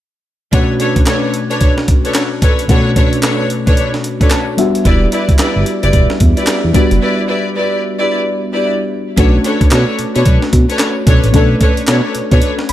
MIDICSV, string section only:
0, 0, Header, 1, 2, 480
1, 0, Start_track
1, 0, Key_signature, 2, "minor"
1, 0, Tempo, 540541
1, 469, Time_signature, 4, 2, 24, 8
1, 11302, End_track
2, 0, Start_track
2, 0, Title_t, "String section"
2, 0, Program_c, 0, 48
2, 468, Note_on_c, 0, 62, 87
2, 470, Note_on_c, 0, 69, 82
2, 470, Note_on_c, 0, 71, 85
2, 472, Note_on_c, 0, 73, 94
2, 642, Note_off_c, 0, 62, 0
2, 643, Note_off_c, 0, 69, 0
2, 644, Note_off_c, 0, 71, 0
2, 645, Note_off_c, 0, 73, 0
2, 711, Note_on_c, 0, 62, 69
2, 712, Note_on_c, 0, 69, 69
2, 713, Note_on_c, 0, 71, 68
2, 714, Note_on_c, 0, 73, 81
2, 884, Note_off_c, 0, 62, 0
2, 884, Note_off_c, 0, 69, 0
2, 885, Note_off_c, 0, 71, 0
2, 886, Note_off_c, 0, 73, 0
2, 947, Note_on_c, 0, 62, 72
2, 949, Note_on_c, 0, 69, 72
2, 951, Note_on_c, 0, 71, 72
2, 953, Note_on_c, 0, 73, 83
2, 1122, Note_off_c, 0, 62, 0
2, 1123, Note_off_c, 0, 69, 0
2, 1124, Note_off_c, 0, 71, 0
2, 1125, Note_off_c, 0, 73, 0
2, 1333, Note_on_c, 0, 62, 77
2, 1336, Note_on_c, 0, 69, 68
2, 1337, Note_on_c, 0, 71, 68
2, 1339, Note_on_c, 0, 73, 85
2, 1470, Note_off_c, 0, 62, 0
2, 1471, Note_off_c, 0, 69, 0
2, 1472, Note_off_c, 0, 71, 0
2, 1473, Note_off_c, 0, 73, 0
2, 1813, Note_on_c, 0, 62, 70
2, 1814, Note_on_c, 0, 69, 63
2, 1817, Note_on_c, 0, 71, 59
2, 1818, Note_on_c, 0, 73, 75
2, 1950, Note_off_c, 0, 62, 0
2, 1950, Note_off_c, 0, 69, 0
2, 1952, Note_off_c, 0, 71, 0
2, 1952, Note_off_c, 0, 73, 0
2, 2147, Note_on_c, 0, 62, 73
2, 2149, Note_on_c, 0, 69, 73
2, 2150, Note_on_c, 0, 71, 76
2, 2152, Note_on_c, 0, 73, 80
2, 2322, Note_off_c, 0, 62, 0
2, 2323, Note_off_c, 0, 69, 0
2, 2324, Note_off_c, 0, 71, 0
2, 2325, Note_off_c, 0, 73, 0
2, 2387, Note_on_c, 0, 62, 93
2, 2390, Note_on_c, 0, 69, 80
2, 2391, Note_on_c, 0, 71, 86
2, 2393, Note_on_c, 0, 73, 103
2, 2562, Note_off_c, 0, 62, 0
2, 2564, Note_off_c, 0, 69, 0
2, 2564, Note_off_c, 0, 71, 0
2, 2565, Note_off_c, 0, 73, 0
2, 2628, Note_on_c, 0, 62, 77
2, 2630, Note_on_c, 0, 69, 69
2, 2632, Note_on_c, 0, 71, 71
2, 2634, Note_on_c, 0, 73, 82
2, 2803, Note_off_c, 0, 62, 0
2, 2804, Note_off_c, 0, 69, 0
2, 2805, Note_off_c, 0, 71, 0
2, 2805, Note_off_c, 0, 73, 0
2, 2868, Note_on_c, 0, 62, 74
2, 2872, Note_on_c, 0, 69, 70
2, 2873, Note_on_c, 0, 71, 68
2, 2874, Note_on_c, 0, 73, 85
2, 3042, Note_off_c, 0, 62, 0
2, 3044, Note_off_c, 0, 69, 0
2, 3045, Note_off_c, 0, 71, 0
2, 3046, Note_off_c, 0, 73, 0
2, 3253, Note_on_c, 0, 62, 80
2, 3256, Note_on_c, 0, 69, 69
2, 3257, Note_on_c, 0, 71, 73
2, 3259, Note_on_c, 0, 73, 81
2, 3390, Note_off_c, 0, 62, 0
2, 3392, Note_off_c, 0, 69, 0
2, 3392, Note_off_c, 0, 71, 0
2, 3393, Note_off_c, 0, 73, 0
2, 3734, Note_on_c, 0, 62, 73
2, 3737, Note_on_c, 0, 69, 69
2, 3738, Note_on_c, 0, 71, 63
2, 3740, Note_on_c, 0, 73, 72
2, 3870, Note_off_c, 0, 62, 0
2, 3872, Note_off_c, 0, 69, 0
2, 3872, Note_off_c, 0, 71, 0
2, 3873, Note_off_c, 0, 73, 0
2, 4306, Note_on_c, 0, 64, 93
2, 4307, Note_on_c, 0, 67, 86
2, 4310, Note_on_c, 0, 71, 78
2, 4313, Note_on_c, 0, 74, 97
2, 4482, Note_off_c, 0, 64, 0
2, 4482, Note_off_c, 0, 67, 0
2, 4484, Note_off_c, 0, 71, 0
2, 4485, Note_off_c, 0, 74, 0
2, 4547, Note_on_c, 0, 64, 76
2, 4548, Note_on_c, 0, 67, 66
2, 4550, Note_on_c, 0, 71, 68
2, 4551, Note_on_c, 0, 74, 77
2, 4722, Note_off_c, 0, 64, 0
2, 4722, Note_off_c, 0, 67, 0
2, 4724, Note_off_c, 0, 71, 0
2, 4724, Note_off_c, 0, 74, 0
2, 4786, Note_on_c, 0, 64, 78
2, 4789, Note_on_c, 0, 67, 69
2, 4790, Note_on_c, 0, 71, 65
2, 4792, Note_on_c, 0, 74, 79
2, 4962, Note_off_c, 0, 64, 0
2, 4963, Note_off_c, 0, 67, 0
2, 4963, Note_off_c, 0, 71, 0
2, 4965, Note_off_c, 0, 74, 0
2, 5175, Note_on_c, 0, 64, 81
2, 5178, Note_on_c, 0, 67, 71
2, 5179, Note_on_c, 0, 71, 67
2, 5180, Note_on_c, 0, 74, 92
2, 5311, Note_off_c, 0, 64, 0
2, 5312, Note_off_c, 0, 67, 0
2, 5313, Note_off_c, 0, 71, 0
2, 5313, Note_off_c, 0, 74, 0
2, 5655, Note_on_c, 0, 64, 76
2, 5657, Note_on_c, 0, 67, 65
2, 5659, Note_on_c, 0, 71, 61
2, 5662, Note_on_c, 0, 74, 80
2, 5791, Note_off_c, 0, 64, 0
2, 5792, Note_off_c, 0, 67, 0
2, 5793, Note_off_c, 0, 71, 0
2, 5794, Note_off_c, 0, 74, 0
2, 5986, Note_on_c, 0, 64, 81
2, 5989, Note_on_c, 0, 67, 73
2, 5990, Note_on_c, 0, 71, 75
2, 5991, Note_on_c, 0, 74, 88
2, 6162, Note_off_c, 0, 64, 0
2, 6163, Note_off_c, 0, 67, 0
2, 6164, Note_off_c, 0, 71, 0
2, 6164, Note_off_c, 0, 74, 0
2, 6225, Note_on_c, 0, 64, 94
2, 6226, Note_on_c, 0, 67, 84
2, 6228, Note_on_c, 0, 71, 86
2, 6230, Note_on_c, 0, 74, 94
2, 6401, Note_off_c, 0, 64, 0
2, 6402, Note_off_c, 0, 67, 0
2, 6402, Note_off_c, 0, 71, 0
2, 6404, Note_off_c, 0, 74, 0
2, 6466, Note_on_c, 0, 64, 77
2, 6466, Note_on_c, 0, 67, 73
2, 6468, Note_on_c, 0, 71, 67
2, 6471, Note_on_c, 0, 74, 79
2, 6642, Note_off_c, 0, 64, 0
2, 6642, Note_off_c, 0, 67, 0
2, 6643, Note_off_c, 0, 71, 0
2, 6644, Note_off_c, 0, 74, 0
2, 6704, Note_on_c, 0, 67, 74
2, 6705, Note_on_c, 0, 64, 78
2, 6707, Note_on_c, 0, 71, 67
2, 6708, Note_on_c, 0, 74, 86
2, 6881, Note_off_c, 0, 64, 0
2, 6881, Note_off_c, 0, 67, 0
2, 6882, Note_off_c, 0, 71, 0
2, 6883, Note_off_c, 0, 74, 0
2, 7090, Note_on_c, 0, 64, 79
2, 7094, Note_on_c, 0, 67, 72
2, 7096, Note_on_c, 0, 71, 71
2, 7097, Note_on_c, 0, 74, 91
2, 7228, Note_off_c, 0, 64, 0
2, 7231, Note_off_c, 0, 67, 0
2, 7231, Note_off_c, 0, 71, 0
2, 7232, Note_off_c, 0, 74, 0
2, 7572, Note_on_c, 0, 64, 75
2, 7575, Note_on_c, 0, 67, 63
2, 7576, Note_on_c, 0, 71, 62
2, 7578, Note_on_c, 0, 74, 80
2, 7710, Note_off_c, 0, 64, 0
2, 7711, Note_off_c, 0, 67, 0
2, 7711, Note_off_c, 0, 71, 0
2, 7713, Note_off_c, 0, 74, 0
2, 8145, Note_on_c, 0, 62, 93
2, 8147, Note_on_c, 0, 69, 86
2, 8148, Note_on_c, 0, 71, 79
2, 8150, Note_on_c, 0, 73, 98
2, 8321, Note_off_c, 0, 62, 0
2, 8322, Note_off_c, 0, 69, 0
2, 8323, Note_off_c, 0, 71, 0
2, 8324, Note_off_c, 0, 73, 0
2, 8387, Note_on_c, 0, 62, 73
2, 8388, Note_on_c, 0, 69, 72
2, 8391, Note_on_c, 0, 71, 67
2, 8391, Note_on_c, 0, 73, 85
2, 8562, Note_off_c, 0, 62, 0
2, 8563, Note_off_c, 0, 69, 0
2, 8564, Note_off_c, 0, 71, 0
2, 8564, Note_off_c, 0, 73, 0
2, 8627, Note_on_c, 0, 62, 79
2, 8628, Note_on_c, 0, 69, 73
2, 8630, Note_on_c, 0, 71, 74
2, 8632, Note_on_c, 0, 73, 86
2, 8802, Note_off_c, 0, 62, 0
2, 8803, Note_off_c, 0, 69, 0
2, 8804, Note_off_c, 0, 71, 0
2, 8805, Note_off_c, 0, 73, 0
2, 9013, Note_on_c, 0, 62, 74
2, 9015, Note_on_c, 0, 69, 72
2, 9018, Note_on_c, 0, 71, 75
2, 9018, Note_on_c, 0, 73, 86
2, 9150, Note_off_c, 0, 62, 0
2, 9151, Note_off_c, 0, 69, 0
2, 9152, Note_off_c, 0, 71, 0
2, 9152, Note_off_c, 0, 73, 0
2, 9493, Note_on_c, 0, 62, 71
2, 9494, Note_on_c, 0, 69, 65
2, 9496, Note_on_c, 0, 71, 67
2, 9499, Note_on_c, 0, 73, 79
2, 9630, Note_off_c, 0, 62, 0
2, 9630, Note_off_c, 0, 69, 0
2, 9631, Note_off_c, 0, 71, 0
2, 9633, Note_off_c, 0, 73, 0
2, 9827, Note_on_c, 0, 62, 80
2, 9827, Note_on_c, 0, 69, 72
2, 9830, Note_on_c, 0, 71, 69
2, 9830, Note_on_c, 0, 73, 92
2, 10002, Note_off_c, 0, 62, 0
2, 10002, Note_off_c, 0, 69, 0
2, 10004, Note_off_c, 0, 71, 0
2, 10004, Note_off_c, 0, 73, 0
2, 10067, Note_on_c, 0, 62, 91
2, 10068, Note_on_c, 0, 69, 91
2, 10071, Note_on_c, 0, 71, 87
2, 10072, Note_on_c, 0, 73, 102
2, 10242, Note_off_c, 0, 62, 0
2, 10243, Note_off_c, 0, 69, 0
2, 10244, Note_off_c, 0, 71, 0
2, 10245, Note_off_c, 0, 73, 0
2, 10307, Note_on_c, 0, 62, 75
2, 10309, Note_on_c, 0, 69, 70
2, 10312, Note_on_c, 0, 71, 71
2, 10312, Note_on_c, 0, 73, 79
2, 10482, Note_off_c, 0, 62, 0
2, 10483, Note_off_c, 0, 69, 0
2, 10484, Note_off_c, 0, 71, 0
2, 10485, Note_off_c, 0, 73, 0
2, 10547, Note_on_c, 0, 62, 77
2, 10549, Note_on_c, 0, 69, 73
2, 10550, Note_on_c, 0, 71, 77
2, 10552, Note_on_c, 0, 73, 86
2, 10722, Note_off_c, 0, 62, 0
2, 10723, Note_off_c, 0, 69, 0
2, 10724, Note_off_c, 0, 71, 0
2, 10724, Note_off_c, 0, 73, 0
2, 10937, Note_on_c, 0, 62, 80
2, 10937, Note_on_c, 0, 69, 70
2, 10940, Note_on_c, 0, 71, 73
2, 10941, Note_on_c, 0, 73, 87
2, 11072, Note_off_c, 0, 62, 0
2, 11072, Note_off_c, 0, 69, 0
2, 11073, Note_off_c, 0, 71, 0
2, 11074, Note_off_c, 0, 73, 0
2, 11302, End_track
0, 0, End_of_file